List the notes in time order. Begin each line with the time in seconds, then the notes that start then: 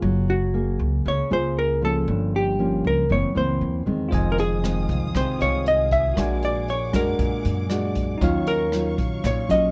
Already playing: A#3 F4 G#4
0.02 F#1 F#3
0.30 F#4
0.54 A#3 G#4
0.79 C#2
1.06 C#2 C#3 C#5
1.30 C#2 A#3 F4 G#4 C5
1.59 A#4
1.82 F3 A#3 C#4 A4
2.08 G1 G2
2.36 G4
2.59 F3 A#3 C#4
2.84 C#2 A#4
3.09 F#1 F#2 E3 A#3 C4 C#5
3.35 C#2 E3 A#3 C4 C5
3.61 D#2
3.86 E2 D#3 G#3 C4
4.09 F1 F2 F4 G#4 C5 D#5 F5 D#6, kick
4.13 G#5, closed hi-hat
4.32 A#4
4.38 G#4, closed hi-hat
4.63 D#3 G#3 C4, cross-stick, closed hi-hat
4.89 C2, kick, closed hi-hat
5.14 C2 C3 D#3 G#3 C4 C5, kick, cross-stick, closed hi-hat
5.39 C2 F4 C5 C#5 D#5 F5, closed hi-hat
5.66 D#5, closed hi-hat
5.91 E5, kick, closed hi-hat
6.14 A#1 A#2 G#3 D4 F#4 A#4 D5 F#5 D6, kick, cross-stick, closed hi-hat
6.18 F#4 G#5
6.43 D5, closed hi-hat
6.68 C#5, closed hi-hat
6.93 F#2 G#3 D4 F#4 A#4, kick, cross-stick, closed hi-hat
7.19 F#2 A#2, kick, closed hi-hat
7.45 F#2, closed hi-hat
7.70 G#3 D4 F#4 D5, cross-stick, closed hi-hat
7.95 kick, closed hi-hat
8.18 D#2 D#3 F#3 C#4 D#4 C#5, kick, closed hi-hat
8.22 F4 F5 C#6
8.47 A#4, closed hi-hat
8.72 F#3 C#4 F4, cross-stick, closed hi-hat
8.98 A#1, kick, closed hi-hat
9.23 A#1 A#2 C#5, kick, cross-stick, closed hi-hat
9.49 A#1 F#3 C#4 F4 D#5, closed hi-hat